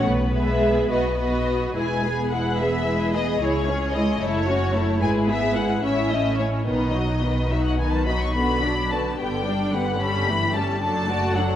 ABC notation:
X:1
M:6/8
L:1/16
Q:3/8=73
K:E
V:1 name="Violin section"
B8- B z3 | g4 f2 e4 d2 | c4 d2 c6 | g2 e2 f2 e2 d2 c2 |
d6 e f g a b c' | [K:D] b4 a2 g4 f2 | b4 a2 a4 f2 |]
V:2 name="Violin section"
z2 [Be]4 [Bd]2 [Bd]4 | [GB]2 [GB]2 [GB]2 [GB]2 [GB]2 [GB]2 | [Gc]2 [Gc]2 [Gc]2 [EA]2 [Fc]2 [EA]2 | [GB]2 [EG]2 [GB]2 [Cc]2 [Ee]2 [Cc]2 |
[DB]2 [Fd]2 [DB]2 [Fd]2 [DB]2 [Fd]2 | [K:D] [FB]2 [Dd]2 [FB]2 [GB]2 [Dd]2 [GB]2 | [GA]2 [EG]2 [GA]2 A2 [Fd]2 A2 |]
V:3 name="Viola section"
z2 [G,G]4 [B,F]2 [B,F]4 | [G,E]2 [B,G]2 [G,E]2 [B,G]2 [G,E]2 [B,G]2 | [G,E]2 C2 [G,E]2 [A,E]2 [CF]2 [A,E]2 | [G,E]2 [B,G]2 [G,E]2 [CE]2 [A,C]2 [CE]2 |
[D,B,]2 [F,D]2 [D,B,]2 [F,D]2 [D,B,]2 [F,D]2 | [K:D] [D,B,]2 [F,D]2 [D,B,]2 [D,B,]2 [G,D]2 [D,B,]2 | [G,C]2 [E,A,]2 [G,C]2 [F,D]2 [A,F]2 [F,D]2 |]
V:4 name="Cello section" clef=bass
B,8- B,2 z2 | E,,12 | C,,6 F,,6 | G,,6 A,,6 |
B,,12- | [K:D] B,,6 G,,6- | G,,6 F,,6 |]
V:5 name="Double bass section" clef=bass
B,,,6 B,,,6 | E,,,12 | C,,6 F,,,6 | G,,,6 A,,,6 |
B,,,12- | [K:D] B,,,6 G,,,6- | G,,,6 F,,,6 |]